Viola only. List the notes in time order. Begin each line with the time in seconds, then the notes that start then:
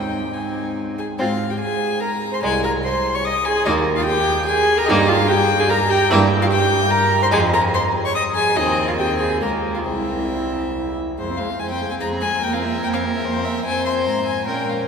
Already playing: C4
0.33 C4
0.99 G#4
1.20 F4
1.50 G4
1.60 G#4
2.01 A#4
2.32 C5
2.42 G#4
2.64 A#4
2.84 C5
3.15 C#5
3.26 D#5
3.47 G#4
3.67 D#4
3.97 F4
4.07 G4
4.48 G#4
4.78 A#4
4.88 D#4
5.08 F4
5.29 G4
5.60 G#4
5.70 A#4
5.90 G4
6.09 E4
6.40 F4
6.50 G4
6.91 A#4
7.22 C5
7.32 G#4
7.53 A#4
7.74 C5
8.05 C#5
8.16 D#5
8.36 G#4
8.57 D#4
8.89 F4
8.99 G4
9.19 G#4
9.42 A#4
9.75 F4
9.86 E4
11.18 G#3
11.30 C4
11.40 G#3
11.50 C4
11.61 G#3
11.72 C4
11.82 G#3
11.91 C4
12.01 G#3
12.12 C4
12.23 G#3
12.33 C4
12.43 A#3
12.54 C4
12.64 A#3
12.74 C4
12.84 A#3
12.95 C4
13.05 A#3
13.15 C4
13.25 A#3
13.36 C4
13.46 A#3
13.54 C4
13.65 C4
14.47 C#4